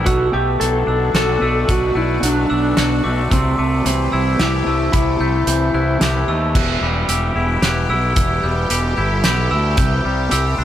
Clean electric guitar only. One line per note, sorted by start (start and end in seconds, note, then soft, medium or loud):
0.00 0.36 B3 soft
0.07 1.42 B2 medium
0.33 1.41 A3 medium
0.60 1.96 F#3 medium
0.87 2.23 D4 medium
1.15 2.50 F#4 medium
1.42 1.95 A3 medium
1.68 3.04 B2 medium
1.95 3.04 A3 medium
2.23 3.31 F#3 medium
2.50 3.31 D4 medium
2.77 3.31 F#4 medium
3.04 3.58 A3 medium
3.31 4.66 C3 medium
3.59 4.65 A3 medium
3.85 5.20 E3 medium
4.13 5.48 E4 medium
4.40 5.75 G4 medium
4.67 5.19 A3 medium
4.93 6.28 C3 medium
5.21 6.28 A3 medium
5.47 6.55 E3 medium
5.74 6.55 E4 medium
6.02 6.55 G4 medium
6.29 6.56 A3 medium
6.56 7.90 E2 medium
6.82 8.43 G3 medium
7.09 7.62 G4 medium
7.36 7.89 E4 medium
7.62 8.70 G4 medium
7.90 8.96 E4 medium
8.16 9.51 E2 medium
8.44 10.05 G3 medium
8.71 9.24 G4 medium
8.98 9.50 E4 medium
9.25 10.31 G4 medium
9.51 9.78 E4 medium
9.77 10.64 C3 medium
10.05 10.64 G3 medium
10.31 10.64 G4 medium
10.58 10.64 D4 medium